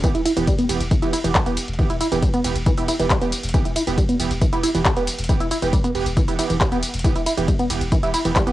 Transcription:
0.04 E3 B3 G4, kick, closed hi-hat, tambourine
0.15 E1 E4, closed hi-hat, tambourine
0.25 E4, open hi-hat, ride, tambourine
0.37 E1 E3 B3 G4, closed hi-hat, tambourine
0.47 G3, kick, closed hi-hat, tambourine
0.59 B3, closed hi-hat, tambourine
0.69 E1 E3 B3 G4, open hi-hat, ride, tambourine
0.80 E1, closed hi-hat, tambourine
0.91 E3, kick, closed hi-hat, tambourine
1.02 E1 E3 B3 E4 G4, closed hi-hat, tambourine
1.13 E4, open hi-hat, ride, tambourine
1.24 E1 E3 B3 G4, closed hi-hat, tambourine
1.35 G3, kick, clap, closed hi-hat, tambourine
1.46 E1 E3 B3 G4, closed hi-hat, tambourine
1.57 open hi-hat, ride, tambourine
1.68 E1, closed hi-hat, tambourine
1.73 closed hi-hat
1.79 E3 B3 G4, kick, closed hi-hat, tambourine
1.90 E1 E4, closed hi-hat, tambourine
2.01 E4, open hi-hat, ride, tambourine
2.12 E1 E3 B3 G4, closed hi-hat, tambourine
2.23 G3, kick, closed hi-hat, tambourine
2.34 B3, closed hi-hat, tambourine
2.44 E1 E3 B3 G4, open hi-hat, ride, tambourine
2.56 E1, closed hi-hat, tambourine
2.66 E3, kick, closed hi-hat, tambourine
2.78 E1 E3 B3 E4 G4, open hi-hat, tambourine
2.88 E4, open hi-hat, ride, tambourine
2.99 E1 E3 B3 G4, closed hi-hat, tambourine
3.10 G3, kick, clap, closed hi-hat, tambourine
3.21 E1 E3 B3 G4, closed hi-hat, tambourine
3.32 open hi-hat, ride, tambourine
3.43 E1, closed hi-hat, tambourine
3.49 closed hi-hat
3.54 E3 B3 G4, kick, closed hi-hat, tambourine
3.65 E1 E4, closed hi-hat, tambourine
3.76 E4, open hi-hat, ride, tambourine
3.87 E1 E3 B3 G4, closed hi-hat, tambourine
3.98 G3, kick, closed hi-hat, tambourine
4.09 B3, closed hi-hat, tambourine
4.20 E1 E3 B3 G4, open hi-hat, ride, tambourine
4.31 E1, closed hi-hat, tambourine
4.42 E3, kick, closed hi-hat, tambourine
4.53 E1 E3 B3 E4 G4, closed hi-hat, tambourine
4.63 E4, open hi-hat, ride, tambourine
4.75 E1 E3 B3 G4, closed hi-hat, tambourine
4.85 G3, kick, clap, closed hi-hat, tambourine
4.97 E1 E3 B3 G4, closed hi-hat, tambourine
5.07 open hi-hat, ride, tambourine
5.18 E1, closed hi-hat, tambourine
5.24 closed hi-hat
5.29 E3 B3 G4, kick, closed hi-hat, tambourine
5.40 E1 E4, closed hi-hat, tambourine
5.51 E4, open hi-hat, ride, tambourine
5.62 E1 E3 B3 G4, closed hi-hat, tambourine
5.73 G3, kick, closed hi-hat, tambourine
5.84 B3, closed hi-hat, tambourine
5.95 E1 E3 B3 G4, open hi-hat, ride, tambourine
6.06 E1, closed hi-hat, tambourine
6.17 E3, kick, closed hi-hat, tambourine
6.28 E1 E3 B3 E4 G4, open hi-hat, tambourine
6.39 E3 B3 E4 G4, open hi-hat, ride, tambourine
6.50 E1 E3, closed hi-hat, tambourine
6.61 G3, kick, clap, closed hi-hat, tambourine
6.72 E1 E3 B3 G4, closed hi-hat, tambourine
6.83 open hi-hat, ride, tambourine
6.94 E1, closed hi-hat, tambourine
6.99 closed hi-hat
7.04 E3 B3 G4, kick, closed hi-hat, tambourine
7.16 E1 E4, closed hi-hat, tambourine
7.26 E4, open hi-hat, ride, tambourine
7.37 E1 E3 B3 G4, closed hi-hat, tambourine
7.48 G3, kick, closed hi-hat, tambourine
7.59 B3, closed hi-hat, tambourine
7.70 E1 E3 B3 G4, open hi-hat, ride, tambourine
7.81 E1, closed hi-hat, tambourine
7.92 E3, kick, closed hi-hat, tambourine
8.03 E1 E3 B3 E4 G4, closed hi-hat, tambourine
8.14 E4, open hi-hat, ride, tambourine
8.25 E1 E3 B3 G4, closed hi-hat, tambourine
8.36 G3, kick, clap, closed hi-hat, tambourine
8.47 E1 E3 B3 G4, closed hi-hat, tambourine

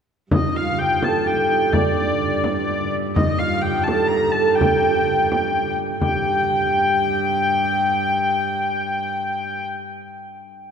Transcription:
0.31 G2 D#4 D#5, frame drum
0.54 F4 F5
0.78 G4 G5, frame drum
1.01 A4 A5, frame drum
1.25 G4 G5
1.50 D#4
1.73 D4 D5, frame drum
2.20 frame drum
2.44 frame drum
3.15 D#4 D#5, frame drum
3.38 F4 F5
3.61 G4 G5, frame drum
3.83 A5
3.88 A4, frame drum
4.07 A#4 A#5
4.31 A4 A5
4.55 G4 G5
4.61 frame drum
5.32 frame drum
6.01 G2 G4 G5, frame drum

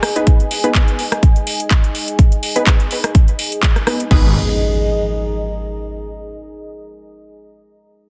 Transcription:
Already playing: G#4 D#5 G#5
0.03 cross-stick, open hi-hat
0.16 B3 D#4 G#4 B4, closed hi-hat
0.27 kick, closed hi-hat
0.40 closed hi-hat
0.51 open hi-hat
0.64 B3 D#4 G#4 B4, closed hi-hat
0.75 kick, clap, closed hi-hat
0.88 closed hi-hat
0.99 open hi-hat
1.12 cross-stick, closed hi-hat
1.23 kick, closed hi-hat
1.36 closed hi-hat
1.47 open hi-hat
1.60 closed hi-hat
1.71 kick, clap, closed hi-hat
1.84 closed hi-hat
1.95 open hi-hat
2.08 closed hi-hat
2.19 kick, closed hi-hat
2.32 closed hi-hat
2.43 open hi-hat
2.56 B3 D#4 G#4 B4, closed hi-hat
2.67 kick, clap, closed hi-hat
2.80 closed hi-hat
2.91 open hi-hat
3.04 cross-stick, closed hi-hat
3.15 kick, closed hi-hat
3.28 closed hi-hat
3.39 open hi-hat
3.52 closed hi-hat
3.63 kick, clap, closed hi-hat
3.76 cross-stick, closed hi-hat
3.87 B3 D#4 G#4 B4, cross-stick, open hi-hat
4.00 closed hi-hat
4.11 G#1 B3 D#4 G#4 B4, kick, crash, impact
4.19 D#5
4.26 A#5

